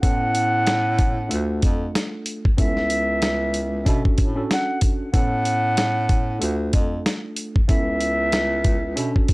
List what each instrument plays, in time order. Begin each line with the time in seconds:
0.01 bass clarinet A2, tine electric piano B3 C#4 E4 A4, flute F#5, kick, closed hi-hat
0.35 closed hi-hat
0.67 snare, closed hi-hat
0.99 kick, closed hi-hat
1.28 bass clarinet D2, tine electric piano A3 D4 F4 A4, closed hi-hat
1.62 bass clarinet F2, kick, closed hi-hat
1.95 snare, closed hi-hat
2.26 closed hi-hat
2.45 kick
2.57 bass clarinet C#2, tine electric piano B3 C#4 E4 A4, flute E5, kick, closed hi-hat
2.77 snare
2.90 closed hi-hat
3.22 snare, closed hi-hat
3.54 closed hi-hat
3.85 bass clarinet B2, tine electric piano C#4 D4 F#4 A4, kick, closed hi-hat
4.05 bass clarinet A2, kick
4.18 bass clarinet A2, kick, closed hi-hat
4.35 tine electric piano C#4 D4 F#4 A4
4.51 flute F#5, snare, closed hi-hat
4.81 kick, closed hi-hat
5.12 bass clarinet A2, tine electric piano B3 C#4 E4 A4, flute F#5, kick, closed hi-hat
5.45 closed hi-hat
5.77 snare, closed hi-hat
6.09 kick, closed hi-hat
6.39 bass clarinet D2, tine electric piano A3 D4 F4 A4, closed hi-hat
6.73 bass clarinet F2, kick, closed hi-hat
7.06 snare, closed hi-hat
7.36 closed hi-hat
7.56 kick
7.68 bass clarinet C#2, tine electric piano B3 C#4 E4 A4, flute E5, kick, closed hi-hat
8.01 closed hi-hat
8.32 snare, closed hi-hat
8.64 kick, closed hi-hat
8.96 bass clarinet B2, tine electric piano C#4 D4 F#4 A4, closed hi-hat
9.16 bass clarinet A2, kick
9.28 bass clarinet A2, kick, closed hi-hat